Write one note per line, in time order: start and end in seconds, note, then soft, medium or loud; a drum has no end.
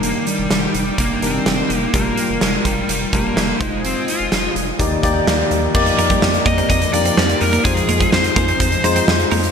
0.00 0.14 F1 medium
0.00 1.92 D#3 medium
0.00 0.55 G3 medium
0.00 0.27 A#3 medium
0.00 0.55 D4 medium
0.00 0.56 D#4 medium
0.00 0.56 A#4 medium
0.00 1.92 D5 medium
0.00 3.57 G5 medium
0.00 closed hi-hat medium
0.27 0.99 G3 medium
0.27 closed hi-hat medium
0.39 0.47 F1 medium
0.50 0.68 F1 medium
0.50 snare loud
0.50 closed hi-hat medium
0.74 0.91 F1 medium
0.74 closed hi-hat medium
0.98 1.15 F1 loud
0.98 1.23 A#3 medium
0.98 kick medium
0.98 closed hi-hat medium
1.22 1.39 F1 loud
1.22 1.78 G3 medium
1.22 1.77 C4 medium
1.22 1.78 D4 medium
1.22 1.78 D#4 medium
1.22 1.78 A#4 medium
1.22 closed hi-hat medium
1.46 1.63 F1 medium
1.46 snare loud
1.46 closed hi-hat medium
1.70 1.87 F1 loud
1.70 closed hi-hat medium
1.77 1.94 A#3 medium
1.93 2.11 F1 medium
1.93 2.68 G3 medium
1.93 2.42 A#3 medium
1.93 2.68 D4 medium
1.93 3.59 F4 medium
1.93 2.68 F4 medium
1.93 3.59 A#4 medium
1.93 2.68 A#4 medium
1.93 kick medium
1.93 closed hi-hat medium
2.17 closed hi-hat medium
2.30 2.38 F1 medium
2.41 2.59 F1 loud
2.41 2.66 G#3 medium
2.41 snare medium
2.41 closed hi-hat medium
2.65 2.82 F1 medium
2.65 2.88 G3 medium
2.65 kick medium
2.65 closed hi-hat medium
2.89 3.06 F1 medium
2.89 3.14 G3 medium
2.89 closed hi-hat medium
3.13 3.30 F1 medium
3.13 3.60 G3 medium
3.13 3.64 A#3 medium
3.13 3.60 D4 medium
3.13 3.59 F4 medium
3.13 3.61 A#4 medium
3.13 kick medium
3.13 closed hi-hat medium
3.36 3.54 F1 medium
3.36 snare medium
3.36 closed hi-hat medium
3.60 3.95 F1 medium
3.60 4.36 G#3 medium
3.60 4.36 D#4 medium
3.60 4.78 F4 medium
3.60 4.37 F4 medium
3.60 4.37 C5 medium
3.60 4.78 D#5 medium
3.60 4.78 G#5 medium
3.60 kick loud
3.60 closed hi-hat medium
3.64 3.81 G#3 medium
3.85 4.09 C4 medium
3.85 closed hi-hat medium
4.08 4.53 F4 medium
4.08 closed hi-hat medium
4.20 4.29 F1 medium
4.32 4.49 F1 medium
4.32 snare medium
4.32 closed hi-hat medium
4.55 4.73 F1 loud
4.55 closed hi-hat medium
4.79 4.97 D#2 medium
4.79 5.47 D#3 medium
4.79 4.98 A#3 medium
4.79 4.98 D#4 medium
4.79 5.74 D#4 medium
4.79 4.99 G4 medium
4.79 4.99 D5 medium
4.79 5.74 D5 medium
4.79 5.74 G5 medium
4.79 kick medium
4.79 closed hi-hat medium
5.03 5.20 D#2 medium
5.03 5.59 A#3 medium
5.03 5.59 D#4 medium
5.03 5.59 G4 medium
5.03 5.59 D5 medium
5.03 kick medium
5.03 closed hi-hat medium
5.27 5.44 D#2 medium
5.27 snare loud
5.27 closed hi-hat medium
5.51 5.68 D#2 medium
5.51 closed hi-hat medium
5.74 5.92 F2 loud
5.74 9.51 F3 medium
5.74 6.49 A#3 medium
5.74 6.49 D#4 medium
5.74 6.49 G4 medium
5.74 7.64 G4 medium
5.74 7.64 A#4 medium
5.74 7.64 D5 medium
5.74 6.49 D5 medium
5.74 kick loud
5.74 crash medium
5.86 muted clean electric guitar stroke soft
5.86 closed hi-hat soft
5.98 6.15 F2 medium
5.98 6.08 A#3 medium
5.98 closed hi-hat medium
6.10 6.20 G3 medium
6.10 kick medium
6.10 closed hi-hat medium
6.22 6.39 F2 loud
6.22 muted clean electric guitar stroke soft
6.22 snare loud
6.34 closed hi-hat soft
6.46 6.63 F2 medium
6.46 6.55 A#3 medium
6.46 6.69 D#5 loud
6.46 kick medium
6.46 closed hi-hat medium
6.58 6.68 C4 medium
6.58 closed hi-hat soft
6.70 6.87 F2 loud
6.70 6.93 D#5 medium
6.70 muted clean electric guitar stroke soft
6.70 kick medium
6.70 closed hi-hat medium
6.82 closed hi-hat medium
6.93 7.11 F2 loud
6.93 7.49 A#3 medium
6.93 7.03 D4 medium
6.93 7.49 D#4 medium
6.93 7.50 G4 medium
6.93 7.42 D5 loud
6.93 7.50 D5 medium
6.93 closed hi-hat medium
7.05 7.15 C4 medium
7.05 closed hi-hat medium
7.17 7.35 F2 medium
7.17 7.27 C4 medium
7.17 snare loud
7.29 muted clean electric guitar stroke soft
7.29 closed hi-hat medium
7.41 7.58 F2 loud
7.41 7.63 A#4 medium
7.41 open hi-hat medium
7.53 7.63 A#3 medium
7.53 closed hi-hat soft
7.64 7.82 F2 loud
7.64 8.39 G#3 medium
7.64 8.39 D#4 medium
7.64 9.51 D#4 medium
7.64 8.39 F4 medium
7.64 8.09 G#4 medium
7.64 9.51 G#4 medium
7.64 8.40 C5 medium
7.64 kick loud
7.64 closed hi-hat medium
7.77 muted clean electric guitar stroke soft
7.77 closed hi-hat soft
7.89 8.06 F2 medium
7.89 7.98 A#3 medium
7.89 closed hi-hat medium
8.00 8.11 G#3 medium
8.00 kick medium
8.00 closed hi-hat medium
8.12 8.30 F2 loud
8.12 9.04 C5 medium
8.12 muted clean electric guitar stroke soft
8.12 snare loud
8.24 closed hi-hat soft
8.36 8.53 F2 loud
8.36 8.46 A#3 medium
8.36 kick medium
8.36 closed hi-hat medium
8.48 8.58 C4 medium
8.48 closed hi-hat medium
8.60 8.77 F2 loud
8.60 muted clean electric guitar stroke soft
8.60 kick medium
8.60 closed hi-hat medium
8.72 closed hi-hat medium
8.84 9.01 F2 loud
8.84 9.40 G#3 medium
8.84 8.94 D#4 medium
8.84 9.40 D#4 medium
8.84 9.40 F4 medium
8.84 9.40 C5 loud
8.84 closed hi-hat medium
8.96 9.06 C4 medium
8.96 closed hi-hat medium
9.08 9.25 F2 loud
9.08 snare loud
9.20 closed hi-hat soft
9.31 9.49 F2 loud
9.31 9.41 A#3 medium
9.31 open hi-hat medium
9.44 closed hi-hat soft